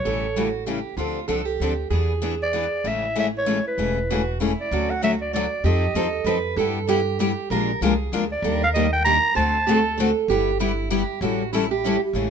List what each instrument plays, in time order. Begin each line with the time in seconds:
Already playing: clarinet C#5
0.06 upright bass A1, steel-string acoustic guitar C#3 E3 G3 A3 C#4 E4 G4 A4
0.36 steel-string acoustic guitar C#3 E3 G3 A3 C#4 E4 F#4 G4 A4
0.66 steel-string acoustic guitar C#3 E3 G3 A3 C#4 E4 G4 A4
0.97 upright bass D2, steel-string acoustic guitar D3 F3 C4 D4 F4 A4
1.28 upright bass C2, steel-string acoustic guitar D3 F3 C4 D4 A4
1.45 steel-string acoustic guitar G4
1.60 upright bass D2, steel-string acoustic guitar D3 F3 C4 D4 A4
1.91 upright bass E2, steel-string acoustic guitar E3 B3 D4 G#4 B4
2.23 steel-string acoustic guitar E3 B3 D4 G#4 B4
2.42 clarinet D5
2.55 steel-string acoustic guitar E3 B3 D4 G#4 B4
2.84 upright bass A1, steel-string acoustic guitar C#3 E3 G#3 A3 C#4 E4 G#4 A4, clarinet E5
3.16 steel-string acoustic guitar C#3 E3 G#3 A3 C#4 E4 G#4 A4, clarinet E5
3.38 clarinet C#5
3.46 steel-string acoustic guitar C#3 E3 G#3 A3 C#4 E4 G#4 A4
3.67 clarinet B4
3.78 upright bass E1, steel-string acoustic guitar C#3 E3 G#3 A3 C#4 E4 G#4 A4
4.10 steel-string acoustic guitar C#3 E3 G#3 A3 C#4 E4 F#4 G#4 A4
4.40 steel-string acoustic guitar C#3 E3 G#3 A3 C#4 E4 G#4 A4
4.60 clarinet D5
4.71 upright bass D2, steel-string acoustic guitar D3 F#3 A3 C#4 F#4 A4
4.90 clarinet F#5
5.02 steel-string acoustic guitar D3 F#3 A3 C#4 F#4 A4, clarinet E5
5.21 clarinet D5
5.33 steel-string acoustic guitar D3 F#3 A3 C#4 F#4 A4, clarinet D5
5.64 upright bass F2, steel-string acoustic guitar F3 C4 D#4 G4 A4, clarinet D#5
5.94 upright bass D#2, steel-string acoustic guitar F3 C4 D#4 A4
6.24 upright bass F2, steel-string acoustic guitar F3 C4 D#4 A4 B4
6.56 upright bass G2, steel-string acoustic guitar G3 B3 E4 G4 A4
6.87 steel-string acoustic guitar G3 B3 E4 G4
7.19 steel-string acoustic guitar G3 B3 E4 G4
7.50 upright bass A#1, steel-string acoustic guitar D3 F3 G#3 A#3 D4 F4 G#4 A#4
7.81 upright bass C2, steel-string acoustic guitar D3 F3 G#3 A#3 D4 F4 G#4 A#4
8.12 upright bass D2, steel-string acoustic guitar D3 F3 G#3 A#3 D4 F4 G#4 A#4
8.31 clarinet D5
8.42 upright bass D#2, steel-string acoustic guitar D#3 G3 A#3 D4 G4 A#4
8.64 clarinet F5
8.74 steel-string acoustic guitar D#3 G3 A#3 D4 G4, clarinet D#5
8.93 clarinet G5
9.04 steel-string acoustic guitar D#3 G3 A#3 D4 G4, clarinet A#5
9.35 upright bass D2, steel-string acoustic guitar D3 A3 C4 F#4 A4 C5, clarinet A5
9.67 steel-string acoustic guitar D3 A3 C4 F#4 A4
9.98 steel-string acoustic guitar D3 A3 C4 F#4 A4
10.28 upright bass G1, steel-string acoustic guitar G3 B3 E4 G4
10.59 steel-string acoustic guitar G3 B3 E4 G4
10.91 steel-string acoustic guitar G3 B3 E4 G4
11.21 upright bass A1, steel-string acoustic guitar E3 G3 C#4 E4 F#4 A4
11.54 steel-string acoustic guitar E3 G3 C#4 E4 A4
11.71 steel-string acoustic guitar G4
11.84 steel-string acoustic guitar E3 G3 C#4 E4 A4
12.13 upright bass A1, steel-string acoustic guitar C#3 E3 G#3 A3 C#4 E4 G#4 A4